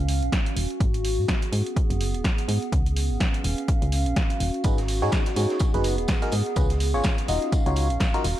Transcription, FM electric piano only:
4.64 4.79 D#4 medium
4.64 4.79 F#4 medium
4.64 4.79 G#4 medium
4.64 4.79 B4 medium
5.02 5.23 D#4 medium
5.02 5.23 F#4 medium
5.02 5.23 G#4 medium
5.02 5.23 C#5 loud
5.36 5.71 D#4 medium
5.36 5.71 F#4 medium
5.36 5.71 G#4 medium
5.36 5.71 C#5 medium
5.74 5.95 D#4 medium
5.74 5.95 F#4 medium
5.74 5.95 G#4 medium
5.74 5.95 B4 medium
6.22 6.34 D#4 medium
6.22 6.34 F#4 medium
6.22 6.34 G#4 medium
6.22 6.34 A#4 loud
6.56 6.72 C#4 medium
6.56 6.72 F4 medium
6.56 6.72 G#4 medium
6.56 6.72 B4 medium
6.94 7.15 C#4 medium
6.94 7.16 F4 medium
6.94 7.16 G#4 medium
6.94 7.16 C#5 loud
7.28 7.63 D#4 medium
7.28 7.63 F4 medium
7.28 7.63 F#4 medium
7.28 7.63 D#5 medium
7.66 7.87 D#4 medium
7.66 7.87 F4 medium
7.66 7.87 F#4 medium
7.66 7.87 C#5 loud
8.14 8.26 D#4 medium
8.14 8.26 F4 medium
8.14 8.26 F#4 medium
8.14 8.26 A#4 loud

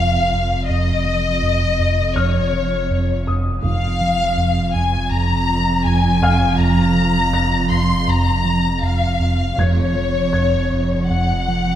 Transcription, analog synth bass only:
0.00 0.18 F2 soft
0.33 0.55 F2 soft
0.69 0.92 F2 medium
1.06 1.28 F3 soft
1.43 1.65 F2 soft
1.79 2.02 F2 soft
2.17 2.39 F2 medium
2.53 2.76 F3 soft
2.91 3.13 F2 soft
3.28 3.50 F2 soft
3.64 3.86 F2 medium
4.01 4.23 F3 soft
4.37 4.59 F2 soft
4.75 4.97 F2 soft
5.11 5.33 F2 medium
5.49 5.71 F3 soft
5.86 6.08 F2 soft
6.22 6.44 F2 soft
6.59 6.81 F2 medium
6.96 7.19 F3 soft
7.33 7.55 F2 soft
7.71 7.93 F2 soft
8.08 8.30 F2 medium
8.45 8.68 F3 soft
8.82 9.05 F2 soft
9.20 9.43 F2 soft
9.58 9.80 F2 medium
9.96 10.18 F3 soft
10.33 10.56 F2 soft
10.72 10.95 F2 soft
11.10 11.33 F2 medium
11.48 11.71 F3 soft

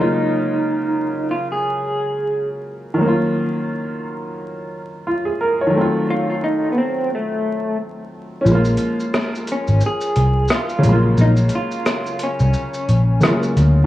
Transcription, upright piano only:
0.00 2.59 C#3 medium
0.00 2.61 F#3 medium
0.00 2.62 G#3 medium
0.00 2.64 A#3 medium
0.00 2.66 F4 medium
2.94 5.65 D#3 medium
2.94 5.68 F#3 medium
3.01 5.69 A#3 medium
3.01 5.71 C#4 medium
3.08 5.05 F4 medium
5.07 5.24 F4 medium
5.25 5.38 G#4 medium
5.40 5.58 A#4 medium
5.61 5.92 C#5 medium
5.66 8.38 D#3 medium
5.66 8.40 F#3 medium
5.73 8.42 A3 medium
5.73 8.44 C4 medium
5.80 8.45 F4 medium
8.41 10.80 F3 medium
8.41 10.78 C#4 medium
8.48 10.81 G#3 medium
8.48 10.83 A#3 medium
8.55 10.85 F4 medium
10.78 13.16 C#3 medium
10.78 13.18 F#3 medium
10.85 13.19 G#3 medium
10.85 13.21 A#3 medium
10.92 13.23 F4 medium
13.20 13.86 C#3 soft
13.20 13.86 F#3 soft
13.20 13.86 G#3 soft
13.25 13.86 A#3 soft
13.25 13.86 F4 medium

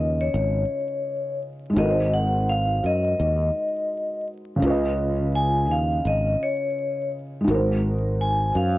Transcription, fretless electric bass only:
0.00 0.28 D#2 medium
0.34 0.63 G#1 loud
1.76 2.79 G#1 loud
2.84 3.13 F#2 medium
3.20 3.49 D#2 medium
4.62 5.70 C#2 loud
5.70 5.99 D#2 medium
6.05 6.35 G#1 medium
7.48 8.51 G#1 loud
8.55 8.78 F#2 medium

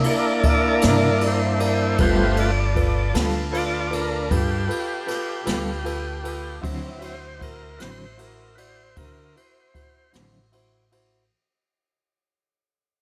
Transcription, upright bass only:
0.84 1.96 G2 medium
1.99 3.12 G1 loud
3.15 4.27 D2 medium
4.31 4.67 G2 loud
5.47 6.60 D2 medium
6.64 7.77 D2 loud
7.81 8.94 A1 medium
8.97 9.33 D3 loud
10.16 11.28 A1 medium

